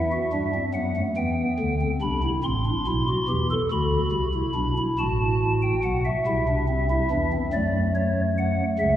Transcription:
0.00 0.17 E2 medium
0.00 0.17 E3 medium
0.00 0.64 E5 medium
0.12 0.30 F#4 medium
0.32 0.59 G2 medium
0.32 0.59 G3 medium
0.32 0.51 D4 medium
0.54 0.73 C4 medium
0.74 1.01 F#2 medium
0.74 1.01 F#3 medium
0.74 0.93 B3 medium
0.74 1.01 F#5 medium
0.96 1.15 A3 medium
1.17 1.44 E2 medium
1.17 1.44 E3 medium
1.17 1.72 B3 medium
1.17 1.90 G5 medium
1.60 1.86 D2 medium
1.60 1.86 D3 medium
1.81 2.00 C4 medium
2.01 2.28 C2 medium
2.01 2.28 C3 medium
2.01 2.20 D4 medium
2.01 2.28 B5 medium
2.22 2.41 E4 medium
2.44 2.71 A1 medium
2.44 2.70 A2 medium
2.44 2.63 C4 medium
2.44 3.53 C6 medium
2.65 2.84 D4 medium
2.87 3.13 B1 medium
2.87 3.13 B2 medium
2.87 3.05 E4 medium
3.08 3.26 F#4 medium
3.29 3.55 E2 medium
3.29 3.55 E3 medium
3.29 3.47 G4 medium
3.51 3.69 A4 medium
3.71 3.98 D2 medium
3.71 3.97 D3 medium
3.71 4.26 F#4 medium
3.71 4.81 B5 medium
4.12 4.39 C2 medium
4.12 4.39 C3 medium
4.33 4.52 E4 medium
4.55 4.82 B1 medium
4.55 4.82 B2 medium
4.55 4.74 D4 medium
4.78 4.96 E4 medium
4.99 5.72 A1 medium
4.99 5.72 A2 medium
4.99 6.08 F#4 medium
4.99 5.53 A5 medium
5.62 5.81 G5 medium
5.84 6.10 B1 medium
5.84 6.10 B2 medium
5.84 6.02 F#5 medium
6.05 7.32 E5 medium
6.26 6.99 C2 medium
6.26 6.99 C3 medium
6.26 6.44 E4 medium
6.48 6.66 D4 medium
6.68 6.86 C4 medium
6.90 7.08 E4 medium
7.11 7.37 E2 medium
7.11 7.37 E3 medium
7.11 7.29 D4 medium
7.32 7.50 C4 medium
7.53 8.61 F#2 medium
7.53 8.61 F#3 medium
7.53 8.96 A3 medium
7.53 7.79 D5 medium
7.95 8.21 C#5 medium
8.38 8.64 F#5 medium
8.79 8.96 C#2 medium
8.79 8.96 C#3 medium
8.79 8.96 E5 medium

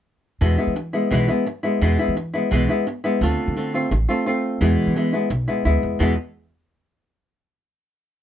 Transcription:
0.41 0.55 E2 medium
0.41 0.58 B2 medium
0.41 0.58 E3 medium
0.41 0.58 G#3 medium
0.41 0.58 B3 medium
0.41 0.57 E4 medium
0.58 0.75 G#3 soft
0.58 0.75 B3 soft
0.58 0.75 E4 soft
0.67 1.02 E3 medium
0.76 muted nylon-string guitar stroke medium
0.93 1.10 G#3 soft
0.93 1.11 B3 soft
0.93 1.10 E4 soft
1.11 1.25 B1 medium
1.11 1.28 B2 medium
1.11 1.28 E3 medium
1.11 1.28 G#3 medium
1.11 1.28 B3 medium
1.11 1.27 E4 medium
1.28 1.45 G#3 soft
1.28 1.46 B3 soft
1.28 1.45 E4 soft
1.46 muted nylon-string guitar stroke medium
1.63 1.81 G#3 soft
1.63 1.81 B3 medium
1.63 1.80 E4 medium
1.81 1.95 E2 medium
1.81 1.98 B2 medium
1.81 1.98 E3 medium
1.81 1.99 G#3 medium
1.81 1.99 B3 medium
1.81 1.98 E4 medium
1.99 2.16 G#3 soft
1.99 2.16 B3 soft
1.99 2.16 E4 medium
2.08 2.43 E3 medium
2.17 muted nylon-string guitar stroke medium
2.34 2.51 G#3 soft
2.34 2.51 B3 soft
2.34 2.51 E4 soft
2.51 2.65 B1 medium
2.51 2.68 B2 medium
2.51 2.68 E3 medium
2.51 2.69 G#3 medium
2.51 2.69 B3 loud
2.51 2.68 E4 medium
2.69 2.87 G#3 soft
2.69 2.86 B3 soft
2.69 2.86 E4 medium
2.87 muted nylon-string guitar stroke medium
3.04 3.22 G#3 soft
3.04 3.21 B3 medium
3.04 3.21 E4 medium
3.21 3.35 D2 medium
3.21 3.55 D3 medium
3.21 3.56 A3 medium
3.21 3.56 C4 medium
3.21 3.57 F4 medium
3.48 3.82 D3 medium
3.57 3.73 D3 medium
3.57 3.74 A3 medium
3.57 3.74 C4 medium
3.57 3.73 F4 medium
3.74 3.90 A3 soft
3.74 3.90 C4 soft
3.74 3.91 F4 medium
3.91 4.05 A1 medium
3.91 muted nylon-string guitar stroke medium
4.09 4.26 A3 soft
4.09 4.26 C4 medium
4.09 4.25 F4 medium
4.26 4.61 A3 soft
4.26 4.61 C4 soft
4.26 4.60 F4 medium
4.61 4.75 E2 medium
4.61 4.95 B2 medium
4.61 4.94 E3 medium
4.61 4.95 G#3 medium
4.61 4.96 B3 medium
4.61 4.96 E4 medium
4.87 5.21 E3 medium
4.96 5.12 E3 soft
4.96 5.13 G#3 medium
4.96 5.12 B3 medium
4.96 5.11 E4 medium
5.13 5.29 G#3 soft
5.13 5.30 B3 soft
5.13 5.30 E4 soft
5.30 5.44 B1 medium
5.30 muted nylon-string guitar stroke medium
5.48 5.65 G#3 soft
5.48 5.65 B3 soft
5.48 5.64 E4 medium
5.65 5.81 D2 medium
5.65 5.99 G#3 soft
5.65 5.99 B3 soft
5.65 5.99 E4 medium
5.83 5.98 E2 medium
5.99 6.13 E2 medium
5.99 6.16 E2 medium
5.99 6.13 B2 medium
5.99 6.14 E3 medium
5.99 6.14 G#3 medium
5.99 6.14 B3 medium
5.99 6.14 E4 medium

